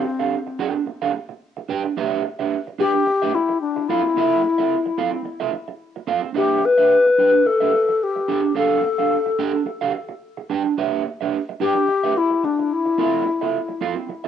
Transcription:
Already playing: C4
0.04 muted clean electric guitar stroke
0.19 D4 G4 A4 F5
0.47 muted clean electric guitar stroke
0.59 D4 G4 A4 G5
0.76 muted clean electric guitar stroke
0.86 muted clean electric guitar stroke
1.02 D4 G4 A4 F5
1.14 muted clean electric guitar stroke
1.29 muted clean electric guitar stroke
1.57 muted clean electric guitar stroke
1.69 D4 G4 B4 G5
1.85 muted clean electric guitar stroke
1.97 D4 G4 B4 E5
2.25 muted clean electric guitar stroke
2.39 D4 G4 B4 E5
2.67 muted clean electric guitar stroke
2.79 D4 G4 B4 G5
2.94 muted clean electric guitar stroke
3.07 muted clean electric guitar stroke
3.22 D4 G4 B4 E5
3.34 E4, muted clean electric guitar stroke
3.49 muted clean electric guitar stroke
3.61 D4
3.76 muted clean electric guitar stroke
3.88 C4 E4 F4 A4 F5
4.04 muted clean electric guitar stroke
4.16 C4 F4 A4 E5
4.43 muted clean electric guitar stroke
4.58 C4 F4 A4 E5
4.86 muted clean electric guitar stroke
4.98 C4 F4 A4 F5
5.13 muted clean electric guitar stroke
5.24 muted clean electric guitar stroke
5.40 C4 F4 A4 E5
5.53 muted clean electric guitar stroke
5.68 muted clean electric guitar stroke
5.96 muted clean electric guitar stroke
6.07 C4 F4 A4 F5
6.24 muted clean electric guitar stroke
6.34 D4 G4 B4 E5
6.63 B4, muted clean electric guitar stroke
6.78 D4 G4 B4 E5
7.06 muted clean electric guitar stroke
7.18 D4 G4 B4 G5
7.34 muted clean electric guitar stroke
7.46 A4, muted clean electric guitar stroke
7.60 D4 G4 B4 E5
7.73 muted clean electric guitar stroke
7.89 muted clean electric guitar stroke
8.03 G4
8.16 muted clean electric guitar stroke
8.28 D4 G4 A4 G5
8.43 muted clean electric guitar stroke
8.55 D4 G4 A4 F5
8.83 muted clean electric guitar stroke
8.98 D4 G4 A4 F5
9.26 muted clean electric guitar stroke
9.39 D4 G4 A4 G5
9.54 muted clean electric guitar stroke
9.65 muted clean electric guitar stroke
9.81 D4 G4 A4 F5
9.94 muted clean electric guitar stroke
10.09 muted clean electric guitar stroke
10.37 muted clean electric guitar stroke
10.49 D4 G4 B4 G5
10.65 muted clean electric guitar stroke
10.77 D4 G4 B4 E5
11.05 muted clean electric guitar stroke
11.21 D4 G4 B4 E5
11.49 muted clean electric guitar stroke
11.60 D4 G4 B4 G5
11.77 muted clean electric guitar stroke
11.88 muted clean electric guitar stroke
12.04 D4 G4 B4 E5
12.15 E4, muted clean electric guitar stroke
12.30 muted clean electric guitar stroke
12.43 D4, muted clean electric guitar stroke
12.59 muted clean electric guitar stroke
12.73 E4
12.86 muted clean electric guitar stroke
12.98 C4 F4 A4 E5
13.26 muted clean electric guitar stroke
13.41 C4 F4 A4 E5
13.69 muted clean electric guitar stroke
13.81 C4 F4 A4 F5
13.97 muted clean electric guitar stroke
14.09 muted clean electric guitar stroke
14.24 A4 E5

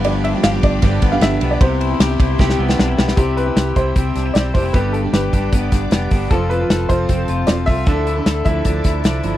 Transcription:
Already playing: G1 B3 G4 F5 B5 D6
0.03 G2 F3 B3 D4 G4 D5, ride
0.24 D4 E5, ride
0.34 F3 B3 D4 G4
0.43 G1 G4 F5, snare, ride
0.52 F3 B3 D4 G4
0.63 G1 D4 D5, kick, ride
0.82 G1 G2 D3 F3 B3 D4 G4, kick, ride
1.02 G1 B3, kick, ride
1.12 G2 D3 F3 B3 D4 G4 F5
1.21 G1 D4 E5, snare, ride
1.41 B1 F3 B3 D4 G4, ride
1.51 D5
1.60 C2 C3 G3 B3 E4 G4 C5 E5 C6, kick, ride
1.80 E4, ride
1.90 B3 E4 G4
1.99 C2 G4, snare, ride
2.09 B3 E4 G4
2.20 C2 E4, kick, ride
2.38 C2 C3 G3 B3 E4 G4, kick, snare
2.50 snare
2.59 C2 B3
2.68 C3 G3 B3 E4 G4, snare
2.79 B1 D4, snare
2.88 E4
2.97 B1 G3 B3 E4 G4, snare
3.08 snare
3.16 C2 C3 G3 C4 E4 G4 E5 G5 E6, kick, closed hi-hat
3.37 E4 B4, closed hi-hat
3.46 C4 E4 G4
3.56 C2 G4, snare, closed hi-hat
3.75 C2 G3 C4 E4 G4 C5, kick, closed hi-hat
3.95 C2 G3 C4 E4 G4, kick, closed hi-hat
4.15 C2 D4, snare, closed hi-hat
4.26 E4
4.34 B1 G3 C4 E4 G4 D5, snare, closed hi-hat
4.54 F1 G3 C4 D4 E4 G4 C5, kick, open hi-hat
4.65 E4
4.73 G1 G2 D3 G3 B3 D4 G4 B4 D5 B5 D6, kick, closed hi-hat
4.93 D4 A4, closed hi-hat
5.03 G3 B3 D4 G4
5.13 G1 G4 B4, snare, closed hi-hat
5.33 G1 G3 B3 D4 G4, kick, closed hi-hat
5.52 G1 G3 B3 D4 G4, kick, closed hi-hat
5.72 G1 D4, kick, snare, closed hi-hat
5.91 F1 G3 B3 D4 G4, snare, closed hi-hat
6.11 G1 G3 B3 D4 G4, kick, open hi-hat
6.30 F1 F3 C4 F4 A4 A5, kick, closed hi-hat
6.50 F4 B4, closed hi-hat
6.60 C4 F4 A4
6.70 F1 A4, snare, closed hi-hat
6.89 F1 F3 C4 F4 A4 C5, kick, closed hi-hat
7.09 F1 F3 C4 F4 A4, kick, closed hi-hat
7.28 F1 F4, closed hi-hat
7.47 E1 F3 C4 F4 A4 D5, snare, closed hi-hat
7.66 C2 F3 C4 F4 A4 E5, kick, open hi-hat
7.86 D2 D3 F3 D4 E4 A4 E5 D6, kick, closed hi-hat
8.07 E4, closed hi-hat
8.16 D4 E4 A4
8.26 D2 A4, snare, closed hi-hat
8.45 D2 F3 D4 E4 A4 E5, kick, closed hi-hat
8.64 D2 F3 D4 E4 A4, kick, closed hi-hat
8.84 D2 E4, kick, snare, closed hi-hat
9.03 C2 F3 D4 E4 A4, snare, closed hi-hat
9.23 G1 F3 D4 E4 A4, closed hi-hat

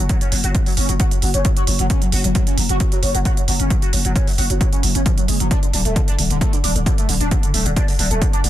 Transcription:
0.09 F#3, kick, closed hi-hat
0.21 C#4, closed hi-hat
0.32 F#1 F#3, open hi-hat
0.44 F#1 F#4, closed hi-hat
0.55 F#3, kick, closed hi-hat
0.66 F#3, open hi-hat
0.77 F#1 C#4, open hi-hat
0.89 F#1 F#3, closed hi-hat
1.00 F#4, kick, closed hi-hat
1.11 F#3, closed hi-hat
1.22 F#1 F#3, open hi-hat
1.34 F#1 C#4, closed hi-hat
1.45 F#3, kick, closed hi-hat
1.57 F#4, closed hi-hat
1.67 F#1 F#3, open hi-hat
1.79 F#1 F#3, closed hi-hat
1.90 C#4, kick, closed hi-hat
2.02 F#3, closed hi-hat
2.12 F#1 F#4, open hi-hat
2.24 F#1 F#3, closed hi-hat
2.35 F#3, kick, closed hi-hat
2.47 C#4, closed hi-hat
2.58 F#1 F#3, open hi-hat
2.69 F#1 F#4, closed hi-hat
2.80 F#3, kick, closed hi-hat
2.92 F#3, closed hi-hat
3.03 F#1 C#4, open hi-hat
3.15 F#1 F#3, closed hi-hat
3.25 F#4, kick, closed hi-hat
3.37 F#3, closed hi-hat
3.48 F#1 F#3, open hi-hat
3.60 F#1 C#4, closed hi-hat
3.70 F#3, kick, closed hi-hat
3.82 F#4, closed hi-hat
3.93 F#1 F#3, open hi-hat
4.05 F#1 F#3, closed hi-hat
4.16 C#4, kick, closed hi-hat
4.27 F#3, open hi-hat
4.38 F#1 F#4, open hi-hat
4.50 F#1 F#3, closed hi-hat
4.61 F#3, kick, closed hi-hat
4.73 C#4, closed hi-hat
4.83 F#1 F#3, open hi-hat
4.95 F#1 C#4, closed hi-hat
5.06 F3, kick, closed hi-hat
5.18 F#3, closed hi-hat
5.28 F#1 G#3, open hi-hat
5.40 F#1 F#3, closed hi-hat
5.51 D4, kick, closed hi-hat
5.63 D3, closed hi-hat
5.74 D1 D3, open hi-hat
5.85 D1 A3, closed hi-hat
5.96 D3, kick, closed hi-hat
6.08 D4, closed hi-hat
6.19 D1 D3, open hi-hat
6.30 D1 D3, closed hi-hat
6.41 A3, kick, closed hi-hat
6.53 D3, closed hi-hat
6.64 D1 D4, open hi-hat
6.75 D1 D3, closed hi-hat
6.86 D3, kick, closed hi-hat
6.98 A3, closed hi-hat
7.09 D1 D3, open hi-hat
7.21 D1 D4, closed hi-hat
7.31 D3, kick, closed hi-hat
7.43 D3, closed hi-hat
7.54 D1 A3, open hi-hat
7.66 D1 D3, closed hi-hat
7.76 D4, kick, closed hi-hat
7.88 D3, open hi-hat
7.99 D1 D3, open hi-hat
8.11 D1 A3, closed hi-hat
8.22 D3, kick, closed hi-hat
8.33 D4, closed hi-hat
8.44 D1 D3, open hi-hat

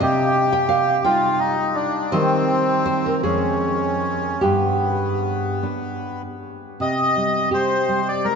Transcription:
0.00 C3 G4 D#5
0.52 G5
0.69 F5
1.04 G3 D#4 F4 G5
1.40 D#4
1.75 D4
2.11 D#3 G3 C4 D#5
2.86 C5
3.06 A#4
3.23 F2 G#3 C#4 G#4
4.41 G2 B3 G4
5.63 B3 D4
6.80 C3 D#5
7.16 G3
7.51 G4 C5
7.88 G3
8.08 D5
8.25 G#3 A#4

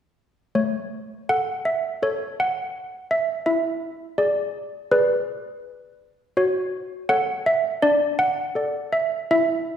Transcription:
0.55 A3 C#5
1.29 A4 F#5
1.65 E5
2.02 A4 C#5
2.40 F#5
3.11 E5
3.46 E4 E5
4.18 G#4 D5
4.91 G#4 B4 D5
6.37 F#4 C#5
7.09 A4 C#5 F#5
7.46 E5
7.82 D4 D5
8.19 F#5
8.55 A4 D5
8.93 E5
9.31 E4 E5

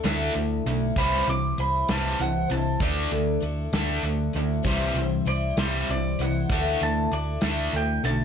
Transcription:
0.04 D2 D3 E3 A3 D4 E4 A4, snare, closed hi-hat
0.35 D2 D3 A3, closed hi-hat
0.66 B1 D3 A3 D4 E4 A4, closed hi-hat
0.96 C2 C3 E3 G3 C4 E4 C5 B5, kick, closed hi-hat
1.28 C2 C3 E3 D6, closed hi-hat
1.58 C2 G3 C4 E4 C5 B5, closed hi-hat
1.88 C2 C3 E3 G3 C4 E4 C5 A5, snare, closed hi-hat
2.19 C2 C3 E3 F#5, closed hi-hat
2.48 C2 C3 E3 G3 C4 E4 C5 A5, closed hi-hat
2.80 D2 D3 E3 A3 D4 E4 A4 D5, kick, closed hi-hat, shaker
3.12 D2 D3 A3, closed hi-hat
3.40 D2 A3 D4 E4 A4, closed hi-hat, shaker
3.73 D2 D3 E3 A3 D4 E4 A4, snare, closed hi-hat, shaker
4.03 D2 D3 A3, closed hi-hat, shaker
4.33 D2 D3 D4 E4 A4, closed hi-hat, shaker
4.38 A3
4.63 C2 C3 E3 G3 C4 E4 C5, kick, closed hi-hat, shaker
4.94 C2 E3, closed hi-hat
4.99 C3
5.25 C2 G3 C4 E4 C5 D5, closed hi-hat, shaker
5.57 C2 C3 E3 G3 C4 E4 C5, snare, closed hi-hat, shaker
5.88 C2 C3 E3 D5, closed hi-hat, shaker
6.19 C2 C3 E3 G3 C4 E4 C5 F#5, closed hi-hat, shaker
6.49 D2 D3 E3 A3 D4 E4 A4, kick, closed hi-hat, shaker
6.80 D2 D3 A3 A5, closed hi-hat
7.12 D2 A3 D4 E4 A4 D5, closed hi-hat, shaker
7.41 D2 D3 E3 A3 D4 E4 A4, snare, closed hi-hat, shaker
7.72 D2 D3 A3 G5, closed hi-hat, shaker
8.03 B1 D3 A3 D4 E4 A4 A5, closed hi-hat, shaker

